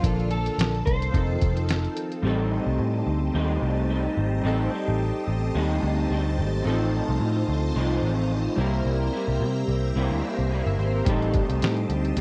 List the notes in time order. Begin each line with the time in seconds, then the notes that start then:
Already playing: F3 F4
0.01 A#1 D3 F3 A#3 D4 A4, kick, closed hi-hat
0.06 A4
0.20 closed hi-hat
0.31 A4, closed hi-hat
0.46 closed hi-hat
0.58 A#1, snare, closed hi-hat
0.75 closed hi-hat
0.86 C2 C5, kick, closed hi-hat
1.02 closed hi-hat
1.11 F1 D#3 F3 C4 D#4, kick, closed hi-hat
1.16 A4
1.42 F1, kick, closed hi-hat
1.57 closed hi-hat
1.69 snare, closed hi-hat
1.85 closed hi-hat
1.97 closed hi-hat
2.12 closed hi-hat
2.22 A1 A2 G3 C4 D#4 G4 C5 D#5 A5
2.26 C4 D#4 A4
2.67 C2
2.79 A2
3.07 D2
3.34 D#2 A2 G3 C4 D#4
3.62 C2
3.89 A2 G3 C4 D#4
4.17 G#1
4.42 A1 A2 G3 C4 D#4
4.46 D#4 A4
4.71 G3 C4 D#4
4.88 A1
5.28 A1
5.55 D#2 A2 G3 C4 D#4
5.83 D2
6.10 D2 A2 G3 C4 D#4
6.38 G#1
6.62 A1 A2 F3 C4 D#4
6.67 F3 C4 D#4 F4 A4
7.09 C2
7.21 A2
7.48 D2
7.75 C2 A2 F3 C4 D#4
8.03 A1
8.56 C2 G3 A#3 C4 E4 G4
8.60 C3 A#4 E5 A#5
8.86 C2
9.13 G3 A#3 E4
9.28 C2
9.40 C3
9.68 C2
9.96 C2 C3 G3 A#3 E4
10.11 D2
10.39 C2
10.52 C3 G3 A#3 E4
10.66 G1 E5
10.79 G#1 C5
10.96 A#4
11.05 A1 A2 G3 C4 D#4 D#5 A5, kick, closed hi-hat
11.09 C4 D#4 A4
11.22 closed hi-hat
11.34 kick, closed hi-hat
11.49 C2, closed hi-hat
11.62 A2, snare, closed hi-hat
11.77 closed hi-hat
11.90 D2, closed hi-hat
12.05 closed hi-hat
12.16 D#2 A2, closed hi-hat